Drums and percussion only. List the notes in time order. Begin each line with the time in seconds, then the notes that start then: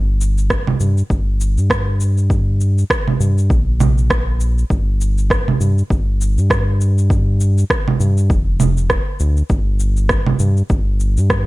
0.21 cabasa
0.38 cabasa
0.50 kick, cross-stick, cabasa
0.67 low conga
0.80 cabasa
0.98 cabasa
1.10 kick, cabasa
1.41 cabasa
1.58 cabasa
1.70 kick, cross-stick, cabasa
2.00 cabasa
2.18 cabasa
2.30 kick, cabasa
2.61 cabasa
2.78 cabasa
2.90 kick, cross-stick, cabasa
3.08 low conga
3.21 cabasa
3.38 cabasa
3.50 kick, cabasa
3.80 low conga, cabasa
3.98 cabasa
4.10 kick, cross-stick, cabasa
4.41 cabasa
4.58 cabasa
4.70 kick, cabasa
5.01 cabasa
5.18 cabasa
5.30 kick, cross-stick, cabasa
5.48 low conga
5.61 cabasa
5.78 cabasa
5.90 kick, cabasa
6.21 cabasa
6.38 cabasa
6.50 kick, cross-stick, cabasa
6.81 cabasa
6.98 cabasa
7.10 kick, cabasa
7.40 cabasa
7.58 cabasa
7.70 kick, cross-stick, cabasa
7.88 low conga
8.00 cabasa
8.18 cabasa
8.30 kick, cabasa
8.60 low conga, cabasa
8.77 cabasa
8.90 kick, cross-stick, cabasa
9.20 cabasa
9.37 cabasa
9.50 kick, cabasa
9.80 cabasa
9.97 cabasa
10.09 kick, cross-stick, cabasa
10.26 low conga
10.39 cabasa
10.57 cabasa
10.70 kick, cabasa
11.00 cabasa
11.17 cabasa
11.30 kick, cross-stick, cabasa